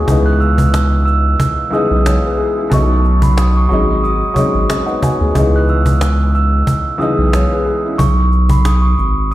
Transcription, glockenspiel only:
0.26 0.39 F#6 medium
0.40 1.03 E6 medium
1.05 1.68 E6 medium
1.73 2.68 D#6 medium
2.73 3.20 C#6 medium
3.23 3.36 B5 medium
3.39 3.54 D#6 medium
3.57 3.68 C#6 medium
3.69 3.99 C#6 medium
4.04 4.33 D#6 medium
4.35 4.83 C#6 medium
5.56 5.68 F#6 medium
5.69 6.31 E6 medium
6.35 6.97 E6 medium
6.99 7.95 D#6 medium
7.98 8.47 C#6 medium
8.50 8.64 B5 medium
8.66 8.81 D#6 medium
8.82 8.96 C#6 medium
8.98 9.28 C#6 medium

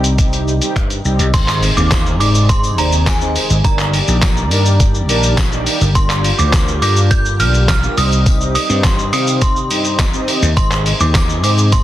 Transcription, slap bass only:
0.00 0.58 C2 loud
0.76 0.99 G2 loud
1.05 1.16 C2 medium
1.19 1.31 C2 medium
1.34 1.68 G#1 loud
1.77 2.21 D#2 medium
2.21 2.78 G#2 medium
2.78 3.35 D#2 medium
3.50 3.62 G#1 loud
3.65 3.99 G1 loud
4.08 4.51 A#1 medium
4.51 5.09 G2 loud
5.09 5.66 A#1 medium
5.81 5.92 G1 loud
5.95 6.30 G1 loud
6.39 6.82 D2 medium
6.82 7.41 G2 loud
7.40 7.86 B1 medium
7.97 8.55 C2 loud
8.70 9.13 G2 medium
9.13 9.70 C3 loud
9.70 10.28 G2 medium
10.42 10.54 D#2 loud
10.57 10.91 G#1 loud
11.00 11.43 D#2 medium
11.43 11.83 G#2 medium

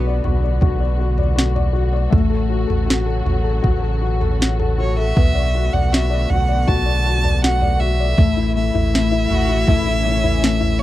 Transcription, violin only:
4.80 4.97 C#5 medium
4.99 5.75 E5 loud
5.73 5.94 F#5 medium
5.93 6.32 E5 medium
6.30 6.69 F#5 loud
6.68 7.44 A5 loud
7.42 7.82 F#5 loud
7.80 8.55 E5 loud
8.56 10.81 E5 loud
10.79 10.83 C#5 loud

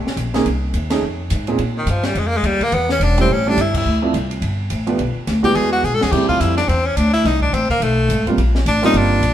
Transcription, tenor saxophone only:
1.78 1.92 D#3 medium
1.90 2.07 F3 medium
2.06 2.20 G3 medium
2.18 2.29 G#3 medium
2.27 2.39 A#3 medium
2.37 2.47 G#3 medium
2.46 2.65 G3 medium
2.63 2.76 A#3 medium
2.74 2.90 B3 medium
2.92 3.05 C#4 medium
3.03 3.19 D4 medium
3.21 3.34 C4 medium
3.33 3.50 C#4 medium
3.49 3.62 D4 loud
3.61 3.76 E4 medium
3.77 4.02 E4 medium
5.45 5.57 G4 medium
5.56 5.72 G#4 medium
5.72 5.86 F#4 medium
5.85 5.96 G#4 medium
5.94 6.04 A4 loud
6.03 6.13 G#4 medium
6.12 6.28 G4 medium
6.29 6.42 F4 medium
6.41 6.57 E4 medium
6.57 6.70 D4 medium
6.69 6.88 C4 medium
6.86 6.99 C#4 medium
6.97 7.13 D4 medium
7.13 7.27 E4 loud
7.26 7.42 D#4 medium
7.42 7.55 D4 medium
7.54 7.70 C4 medium
7.71 7.84 A#3 medium
7.83 8.27 A3 medium
8.68 8.83 D4 medium
8.85 8.98 D#4 loud
8.97 9.34 D4 medium

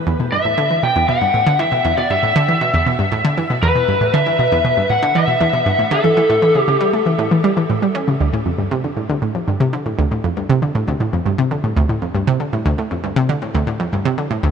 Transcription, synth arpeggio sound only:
0.07 0.16 E2 medium
0.20 0.28 B2 medium
0.32 0.38 G2 medium
0.45 0.54 A2 medium
0.58 0.70 D3 medium
0.70 0.79 E3 medium
0.83 0.92 B2 medium
0.96 1.05 E2 medium
1.08 1.17 B2 medium
1.21 1.27 G2 medium
1.34 1.43 A2 medium
1.47 1.59 D3 loud
1.59 1.68 E3 medium
1.72 1.81 B2 medium
1.85 1.93 E2 loud
1.97 2.06 B2 medium
2.10 2.15 G2 medium
2.23 2.32 A2 medium
2.36 2.48 D3 loud
2.48 2.57 E3 medium
2.61 2.70 B2 medium
2.74 2.82 E2 loud
2.86 2.95 B2 medium
2.99 3.04 G2 medium
3.12 3.21 A2 medium
3.25 3.37 D3 loud
3.37 3.46 E3 medium
3.50 3.59 B2 medium
3.63 3.71 E2 loud
3.75 3.84 B2 medium
3.88 3.93 G2 medium
4.01 4.10 A2 medium
4.14 4.26 D3 loud
4.26 4.35 E3 medium
4.39 4.48 B2 medium
4.52 4.61 E2 loud
4.65 4.73 B2 medium
4.77 4.82 G2 medium
4.90 4.99 A2 medium
5.03 5.15 D3 loud
5.15 5.24 E3 medium
5.28 5.37 B2 medium
5.41 5.49 E2 loud
5.53 5.62 B2 medium
5.66 5.71 G2 medium
5.79 5.88 A2 medium
5.91 6.04 D3 loud
6.04 6.13 E3 medium
6.17 6.26 E3 medium
6.30 6.38 A2 loud
6.42 6.51 E3 medium
6.55 6.60 C#3 medium
6.68 6.77 C#3 medium
6.81 6.93 G3 loud
6.93 7.02 A3 medium
7.06 7.15 E3 medium
7.19 7.27 A2 loud
7.31 7.40 E3 medium
7.44 7.53 G3 loud
7.57 7.66 E3 medium
7.70 7.78 A2 medium
7.82 7.88 G3 medium
7.95 8.07 C#4 medium
8.08 8.16 C#3 medium
8.20 8.29 D2 loud
8.33 8.42 A2 medium
8.46 8.51 F2 medium
8.58 8.67 G2 medium
8.71 8.83 C3 loud
8.84 8.93 D3 medium
8.97 9.05 A2 medium
9.09 9.18 D2 loud
9.22 9.31 A2 medium
9.35 9.40 F2 medium
9.48 9.56 G2 medium
9.60 9.72 C3 loud
9.73 9.82 D3 medium
9.86 9.94 A2 medium
9.99 10.07 D2 loud
10.11 10.20 A2 medium
10.24 10.29 F2 medium
10.37 10.45 G2 medium
10.49 10.61 C3 loud
10.62 10.71 D3 medium
10.75 10.84 A2 medium
10.87 10.96 D2 medium
11.00 11.09 A2 medium
11.13 11.18 F2 medium
11.26 11.34 G2 medium
11.38 11.50 C3 loud
11.51 11.60 D3 medium
11.64 11.72 A2 medium
11.77 11.85 D2 loud
11.89 11.98 A2 medium
12.02 12.07 F2 medium
12.15 12.23 G2 medium
12.27 12.39 C3 loud
12.40 12.49 D3 medium
12.53 12.61 A2 medium
12.65 12.74 D2 loud
12.78 12.87 A2 medium
12.91 12.96 F2 medium
13.04 13.12 G2 medium
13.16 13.28 C3 loud
13.29 13.38 D3 medium
13.42 13.50 A2 medium
13.55 13.63 D2 loud
13.67 13.76 A2 medium
13.80 13.85 F2 medium
13.93 14.01 G2 medium
14.05 14.17 C3 loud
14.18 14.27 D3 medium
14.31 14.39 A2 medium
14.43 14.51 D2 loud

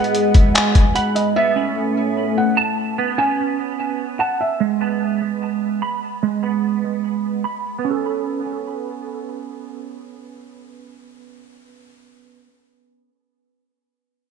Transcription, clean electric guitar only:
0.00 0.96 G#3 medium
0.00 1.16 B3 medium
0.00 0.55 B5 medium
0.96 1.36 B5 medium
1.36 2.58 B3 medium
1.56 2.78 C#4 medium
2.57 3.79 A5 loud
2.98 4.20 B3 medium
3.18 4.40 C#4 medium
4.20 4.60 A5 medium
4.60 5.82 G#3 loud
4.81 6.02 B3 medium
5.82 7.04 B5 medium
6.23 7.44 G#3 medium
6.43 7.64 B3 medium
7.44 7.85 B5 medium
7.78 12.47 B3 medium
7.85 12.53 C#4 medium
7.90 12.58 A4 medium

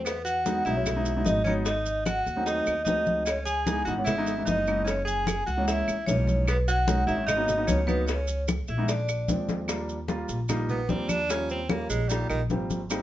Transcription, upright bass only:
0.00 0.60 E2 medium
0.66 1.22 B1 medium
1.26 2.21 G#1 medium
2.26 2.64 D#2 medium
2.67 2.85 D#2 medium
2.87 3.81 C#2 medium
3.87 4.43 G#1 medium
4.47 5.41 F#1 loud
5.48 5.85 C#2 medium
5.88 6.06 C#2 medium
6.08 7.02 B1 loud
7.07 7.64 G#1 medium
7.68 8.63 C#2 loud
8.69 9.25 A#1 loud
9.28 10.23 D#2 loud
10.29 10.86 A#1 medium
10.89 11.84 D#2 loud
11.90 12.27 A#1 medium
12.30 12.49 A#1 medium
12.50 13.02 G#1 medium

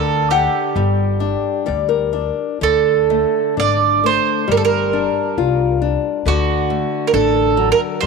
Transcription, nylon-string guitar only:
0.00 0.73 D3 medium
0.31 0.75 F#5 medium
0.76 1.65 G3 medium
1.20 1.65 D4 soft
1.66 2.11 G3 soft
1.66 1.88 D5 soft
1.89 2.56 A#4 medium
2.13 2.59 D4 soft
2.61 4.44 D3 medium
3.10 3.55 A3 soft
3.57 4.02 D4 soft
4.04 4.47 A3 soft
4.48 6.20 G3 medium
4.93 5.35 D4 soft
5.38 5.80 F4 soft
5.82 6.24 D4 soft
6.26 7.99 D3 medium
6.70 7.12 A3 soft
7.14 7.56 D4 medium
7.57 8.00 F#3 soft
8.02 8.07 G3 medium

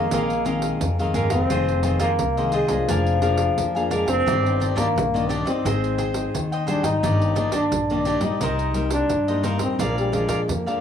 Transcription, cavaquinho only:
0.00 0.11 A#4 soft
0.00 0.10 D#5 soft
0.12 0.44 G#4 medium
0.12 0.44 A#4 medium
0.12 0.45 D#5 medium
0.12 0.45 F5 medium
0.45 0.96 G#4 medium
0.45 0.97 A#4 medium
0.45 0.97 D#5 medium
0.45 0.97 F5 medium
1.00 1.14 A#4 soft
1.00 1.14 D#5 soft
1.00 1.14 F5 soft
1.14 1.31 G#4 medium
1.14 1.31 A#4 medium
1.14 1.31 D#5 medium
1.14 1.29 F5 medium
1.31 1.49 A#4 soft
1.31 1.48 D#5 soft
1.31 1.48 F5 soft
1.50 1.82 F4 medium
1.50 1.83 G#4 medium
1.50 1.83 C5 medium
1.50 1.84 D#5 medium
1.84 1.99 F4 soft
1.84 1.99 G#4 soft
1.84 1.99 C5 soft
1.84 2.00 D#5 medium
2.00 2.10 F4 medium
2.00 2.10 G#4 medium
2.00 2.10 C5 medium
2.00 2.11 D#5 medium
2.37 2.52 G#4 soft
2.37 2.52 C5 medium
2.37 2.53 D#5 soft
2.53 2.69 F4 medium
2.53 2.70 G#4 medium
2.53 2.69 C5 medium
2.53 2.68 D#5 medium
2.69 2.87 G#4 soft
2.69 2.87 C5 soft
2.69 2.86 D#5 medium
2.89 3.20 D4 medium
2.89 3.21 A#4 medium
2.89 3.22 F5 medium
2.89 3.22 G#5 medium
3.22 3.73 D4 medium
3.22 3.73 A#4 medium
3.22 3.73 F5 medium
3.22 3.74 G#5 medium
3.75 3.90 A#4 soft
3.75 3.90 F5 soft
3.75 3.91 G#5 soft
3.91 4.07 D4 medium
3.91 4.07 A#4 medium
3.91 4.06 F5 medium
3.91 4.05 G#5 medium
4.06 4.25 A#4 soft
4.06 4.24 F5 soft
4.06 4.24 G#5 soft
4.26 4.60 G4 medium
4.26 4.60 D5 medium
4.26 4.60 D#5 medium
4.60 4.74 D4 soft
4.60 4.75 G4 soft
4.60 4.76 D5 medium
4.60 4.75 D#5 soft
4.76 4.86 D4 medium
4.76 4.87 G4 medium
4.76 4.87 D5 medium
4.76 4.86 D#5 medium
5.14 5.28 G4 soft
5.14 5.30 D5 medium
5.14 5.29 D#5 soft
5.29 5.46 D4 medium
5.29 5.46 G4 medium
5.29 5.45 D5 medium
5.29 5.45 D#5 medium
5.46 5.63 G4 soft
5.46 5.63 D5 medium
5.46 5.63 D#5 medium
5.65 5.97 G#4 medium
5.65 5.97 C5 medium
5.65 5.98 D#5 medium
5.65 5.99 G5 medium
5.98 6.49 G#4 medium
5.98 6.50 C5 medium
5.98 6.50 D#5 medium
5.98 6.50 G5 medium
6.52 6.66 C5 soft
6.52 6.67 D#5 soft
6.52 6.67 G5 medium
6.67 6.84 G#4 medium
6.67 6.84 C5 medium
6.67 6.83 D#5 medium
6.67 6.82 G5 medium
6.83 7.01 C5 soft
6.83 7.01 D#5 soft
6.83 7.01 G5 medium
7.03 7.35 G4 medium
7.03 7.36 D5 medium
7.03 7.36 D#5 medium
7.35 7.51 D4 medium
7.35 7.52 G4 soft
7.35 7.52 D5 soft
7.35 7.52 D#5 medium
7.53 7.63 D4 medium
7.53 7.63 G4 medium
7.53 7.63 D5 medium
7.53 7.63 D#5 medium
7.91 8.05 G4 soft
7.91 8.06 D5 medium
7.91 8.06 D#5 soft
8.06 8.22 D4 medium
8.06 8.22 G4 medium
8.06 8.20 D5 medium
8.06 8.21 D#5 medium
8.21 8.40 G4 soft
8.21 8.39 D5 soft
8.21 8.39 D#5 soft
8.42 8.75 D#4 medium
8.42 8.74 A#4 medium
8.42 8.75 C5 medium
8.42 8.76 D#5 medium
8.75 9.26 A#4 medium
8.75 9.26 C5 medium
9.28 9.43 A#4 soft
9.28 9.43 C5 soft
9.28 9.44 D#5 soft
9.43 9.60 D#4 medium
9.43 9.59 A#4 medium
9.43 9.58 C5 medium
9.43 9.57 D#5 medium
9.59 9.77 A#4 soft
9.59 9.77 C5 soft
9.59 9.76 D#5 soft
9.79 10.11 G#4 medium
9.79 10.12 A#4 medium
9.79 10.13 D5 medium
9.79 10.12 F5 medium
10.12 10.27 G#4 medium
10.12 10.27 A#4 soft
10.12 10.28 D5 medium
10.12 10.28 F5 medium
10.28 10.39 G#4 medium
10.28 10.39 A#4 medium
10.28 10.40 D5 medium
10.28 10.39 F5 medium
10.66 10.81 A#4 soft
10.66 10.81 D5 soft
10.66 10.81 F5 medium

